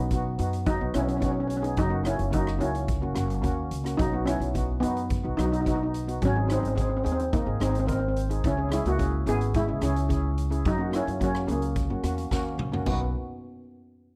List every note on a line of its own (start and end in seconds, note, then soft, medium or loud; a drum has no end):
0.00 0.36 B1 medium
0.00 0.70 B3 loud
0.00 0.63 D#4 medium
0.11 0.29 B3 medium
0.11 0.29 D#4 medium
0.11 0.29 F#4 medium
0.11 kick loud
0.11 closed hi-hat medium
0.38 0.78 F#2 loud
0.38 0.64 B3 medium
0.38 0.65 D#4 medium
0.38 0.64 F#4 medium
0.38 closed hi-hat medium
0.53 closed hi-hat medium
0.66 0.93 F#3 medium
0.66 0.95 D#4 loud
0.66 kick loud
0.66 closed hi-hat medium
0.81 0.94 B1 medium
0.81 0.89 B3 medium
0.81 0.89 D#4 medium
0.81 0.89 F#4 medium
0.94 1.74 B1 loud
0.94 1.11 B3 medium
0.94 1.00 C#4 loud
0.94 1.11 D#4 medium
0.94 1.02 E4 medium
0.94 1.12 F#4 medium
0.94 cross-stick medium
0.94 closed hi-hat medium
1.02 1.07 C#4 medium
1.08 1.16 C#4 medium
1.08 closed hi-hat medium
1.17 1.46 B3 medium
1.17 1.23 C#4 medium
1.17 1.46 D#4 medium
1.21 1.31 C#4 medium
1.21 1.47 F#4 medium
1.21 kick medium
1.21 closed hi-hat medium
1.32 1.39 C#4 medium
1.40 1.46 C#4 medium
1.47 1.54 C#4 medium
1.47 closed hi-hat medium
1.57 1.63 C#4 medium
1.62 1.77 B3 medium
1.62 1.71 C#4 medium
1.62 1.77 D#4 medium
1.62 1.77 G#4 medium
1.62 closed hi-hat medium
1.77 2.16 F#1 loud
1.77 2.04 F#3 medium
1.77 2.07 D#4 loud
1.77 kick loud
1.77 closed hi-hat medium
1.89 1.99 A#3 medium
1.89 1.99 C#4 medium
1.89 1.99 F#4 medium
2.04 2.22 A#3 medium
2.04 2.22 C#4 medium
2.04 2.35 C#4 loud
2.04 2.32 E4 medium
2.04 2.22 F#4 medium
2.04 cross-stick medium
2.04 closed hi-hat medium
2.19 2.57 F#1 medium
2.19 closed hi-hat medium
2.31 2.60 F#3 medium
2.31 2.49 A#3 medium
2.31 2.50 C#4 medium
2.31 2.59 D#4 loud
2.31 2.50 F#4 medium
2.31 kick medium
2.31 closed hi-hat medium
2.47 cross-stick medium
2.59 2.99 C#2 loud
2.59 2.85 A#3 medium
2.59 2.85 C#4 medium
2.59 3.40 C#4 medium
2.59 3.41 E4 medium
2.59 2.86 F#4 medium
2.59 closed hi-hat medium
2.75 closed hi-hat medium
2.88 kick loud
2.88 closed hi-hat medium
3.01 3.15 F#1 medium
3.01 3.10 A#3 medium
3.01 3.11 C#4 medium
3.01 3.11 F#4 medium
3.15 3.42 F#1 loud
3.15 3.33 A#3 medium
3.15 3.33 C#4 medium
3.15 3.33 F#4 medium
3.15 cross-stick medium
3.15 closed hi-hat medium
3.30 closed hi-hat medium
3.42 3.69 D#2 loud
3.42 3.68 A#3 medium
3.42 3.69 C#4 medium
3.42 3.69 F#4 loud
3.42 kick medium
3.42 closed hi-hat medium
3.71 3.97 C#2 medium
3.71 closed hi-hat medium
3.84 3.99 A#3 medium
3.84 3.99 C#4 medium
3.84 3.99 F#4 medium
3.84 cross-stick medium
3.84 closed hi-hat medium
3.97 4.38 B1 loud
3.97 4.25 F#3 medium
3.97 4.27 D#4 loud
3.97 kick loud
3.97 closed hi-hat medium
4.12 4.21 B3 medium
4.12 4.22 D#4 medium
4.12 4.22 F#4 medium
4.25 4.44 B3 medium
4.25 4.84 C#4 loud
4.25 4.44 D#4 medium
4.25 4.79 E4 medium
4.25 4.45 F#4 medium
4.25 cross-stick medium
4.25 closed hi-hat medium
4.40 4.79 B1 medium
4.40 closed hi-hat medium
4.54 4.72 B3 medium
4.54 4.72 D#4 medium
4.54 4.72 F#4 medium
4.54 kick loud
4.54 closed hi-hat medium
4.80 5.21 F#2 medium
4.80 5.33 B3 medium
4.80 5.08 B3 medium
4.80 5.08 D#4 medium
4.80 5.34 D#4 medium
4.80 5.08 F#4 medium
4.80 closed hi-hat loud
4.97 closed hi-hat medium
5.10 kick loud
5.10 closed hi-hat medium
5.24 5.37 B1 medium
5.24 5.33 B3 medium
5.24 5.33 D#4 medium
5.24 5.33 F#4 medium
5.37 6.17 B1 loud
5.37 5.46 F#3 medium
5.37 5.55 B3 medium
5.37 5.45 D#4 loud
5.37 5.56 D#4 medium
5.37 5.56 F#4 medium
5.37 cross-stick medium
5.37 closed hi-hat medium
5.46 5.51 D#4 medium
5.52 5.59 D#4 medium
5.52 closed hi-hat medium
5.61 5.66 D#4 medium
5.65 5.91 B3 medium
5.65 5.91 D#4 medium
5.65 5.74 D#4 medium
5.65 5.92 F#4 medium
5.65 kick loud
5.65 closed hi-hat medium
5.76 5.82 D#4 medium
5.83 5.90 D#4 medium
5.94 closed hi-hat medium
6.07 6.21 B3 medium
6.07 6.22 D#4 medium
6.07 6.22 F#4 medium
6.07 closed hi-hat medium
6.22 6.60 G#1 loud
6.22 6.35 F#3 loud
6.22 6.37 C#4 loud
6.22 kick loud
6.22 closed hi-hat medium
6.35 6.44 C4 medium
6.35 6.44 D#4 medium
6.35 6.44 G#4 medium
6.48 6.66 C4 medium
6.48 6.66 D#4 medium
6.48 6.58 D#4 medium
6.48 6.66 G#4 medium
6.48 cross-stick medium
6.48 closed hi-hat medium
6.52 6.59 C4 loud
6.60 7.01 G#1 medium
6.60 6.66 C4 medium
6.65 6.74 C4 medium
6.65 closed hi-hat medium
6.75 6.80 C4 medium
6.75 6.94 C4 medium
6.75 6.94 D#4 medium
6.75 6.94 G#4 medium
6.75 kick loud
6.75 closed hi-hat medium
6.81 6.88 C4 medium
6.89 6.95 C4 medium
6.97 7.02 C4 medium
7.04 7.44 D#2 medium
7.04 7.11 C4 medium
7.04 7.29 C4 medium
7.04 7.30 D#4 medium
7.04 7.30 G#4 medium
7.04 closed hi-hat medium
7.12 7.19 C4 medium
7.20 7.27 C4 medium
7.20 closed hi-hat medium
7.33 7.59 A#3 loud
7.33 7.59 D#4 medium
7.33 kick loud
7.33 closed hi-hat medium
7.46 7.59 G#1 medium
7.46 7.55 C4 medium
7.46 7.55 D#4 medium
7.46 7.55 G#4 medium
7.60 8.40 G#1 loud
7.60 7.77 C4 medium
7.60 7.68 C4 medium
7.60 7.77 D#4 medium
7.60 7.68 D#4 medium
7.60 7.78 G#4 medium
7.60 cross-stick loud
7.60 closed hi-hat medium
7.70 7.76 C4 medium
7.75 closed hi-hat medium
7.79 7.85 C4 medium
7.86 7.91 C4 medium
7.86 8.12 C4 medium
7.86 8.13 D#4 medium
7.86 8.13 A#4 medium
7.86 kick loud
7.86 closed hi-hat medium
7.92 7.98 C4 medium
8.00 8.06 C4 medium
8.08 8.14 C4 medium
8.16 closed hi-hat medium
8.29 8.43 C4 medium
8.29 8.44 D#4 medium
8.29 8.44 G#4 medium
8.29 closed hi-hat medium
8.44 8.82 C#2 loud
8.44 8.71 C#4 loud
8.44 8.70 E4 medium
8.44 kick loud
8.44 closed hi-hat medium
8.57 8.66 C#4 medium
8.57 8.66 E4 medium
8.57 8.66 G#4 medium
8.69 8.85 G#3 medium
8.69 8.87 C#4 medium
8.69 8.88 E4 medium
8.69 8.88 G#4 medium
8.69 cross-stick medium
8.69 closed hi-hat medium
8.73 8.87 E4 medium
8.85 9.23 C#2 medium
8.85 9.25 A#3 medium
8.85 9.29 F#4 loud
8.85 closed hi-hat medium
8.98 9.16 C#4 medium
8.98 9.16 E4 medium
8.98 9.16 G#4 medium
8.98 kick medium
8.98 closed hi-hat medium
9.26 9.65 G#1 loud
9.26 9.41 B3 medium
9.26 9.51 C#4 medium
9.26 9.52 E4 medium
9.26 9.52 G#4 medium
9.26 9.41 G#4 loud
9.26 closed hi-hat loud
9.41 closed hi-hat medium
9.54 9.82 G#3 medium
9.54 9.84 E4 loud
9.54 kick loud
9.54 closed hi-hat medium
9.68 9.81 C#2 medium
9.68 9.76 C#4 medium
9.68 9.77 E4 medium
9.68 9.77 G#4 medium
9.81 10.61 C#2 loud
9.81 9.99 C#4 medium
9.81 10.34 C#4 medium
9.81 9.99 E4 medium
9.81 10.35 E4 medium
9.81 9.99 G#4 medium
9.81 cross-stick medium
9.81 closed hi-hat loud
9.96 closed hi-hat medium
10.09 10.34 C#4 medium
10.09 10.34 E4 medium
10.09 10.35 G#4 medium
10.09 kick medium
10.09 closed hi-hat medium
10.38 closed hi-hat medium
10.50 10.65 C#4 medium
10.50 10.65 E4 medium
10.50 10.65 G#4 medium
10.50 closed hi-hat medium
10.65 11.03 F#2 loud
10.65 10.92 F#3 medium
10.65 10.95 D#4 loud
10.65 kick loud
10.65 closed hi-hat medium
10.78 10.87 A#3 medium
10.78 10.87 C#4 medium
10.78 10.88 F#4 medium
10.91 11.09 A#3 medium
10.91 11.09 C#4 medium
10.91 11.10 F#4 medium
10.91 cross-stick medium
10.91 closed hi-hat medium
10.95 11.22 C#4 loud
10.95 11.20 E4 medium
11.07 11.45 F#2 medium
11.07 closed hi-hat medium
11.20 11.47 F#3 medium
11.20 11.37 A#3 medium
11.20 11.37 C#4 medium
11.20 11.49 C#4 loud
11.20 11.37 F#4 medium
11.20 kick loud
11.20 closed hi-hat medium
11.35 cross-stick medium
11.47 11.86 C#2 medium
11.47 11.73 A#3 medium
11.47 11.73 C#4 medium
11.47 12.55 C#4 medium
11.47 11.73 G#4 medium
11.47 closed hi-hat medium
11.51 12.57 A#3 medium
11.62 closed hi-hat medium
11.76 kick loud
11.76 closed hi-hat medium
11.90 12.02 F#2 medium
11.90 11.98 A#3 medium
11.90 11.98 C#4 medium
11.90 11.99 F#4 medium
12.03 12.28 E2 medium
12.03 12.20 A#3 medium
12.03 12.21 C#4 medium
12.03 12.21 F#4 medium
12.03 cross-stick medium
12.03 closed hi-hat medium
12.18 closed hi-hat medium
12.31 12.56 D#2 medium
12.31 12.56 A#3 loud
12.31 12.57 C#4 medium
12.31 12.57 F#4 loud
12.31 kick medium
12.31 snare medium
12.58 12.83 C#2 medium
12.58 mid tom loud
12.72 12.86 A#3 medium
12.72 12.86 C#4 medium
12.72 12.86 F#4 medium
12.72 floor tom loud
12.86 13.12 B1 loud
12.86 13.12 B3 medium
12.86 13.13 B3 medium
12.86 13.13 D#4 medium
12.86 13.13 F#4 medium
12.86 kick loud
12.86 crash loud